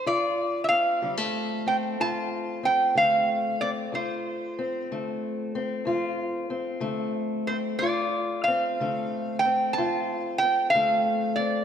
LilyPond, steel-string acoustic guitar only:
\new Staff \with { instrumentName = "Steel-string acoustic guitar" } { \time 12/8 \key d \minor \tempo 4. = 62 << { f'4 c'8 g16 a8. c'8 f'4 c'8 a4 c'8 | f'4 c'8 a4 c'8 f'4 c'8 a4 c'8 | f'4 c'8 a4 c'8 f'4 c'8 a4 c'8 | } \\ { d,4 r8 d4 r8 d,4 r8 d4 r8 | d,4 r8 d4 r8 d,4 r8 d4 r8 | d,4 r8 d4 r8 d,4 r8 d4 r8 | } >> }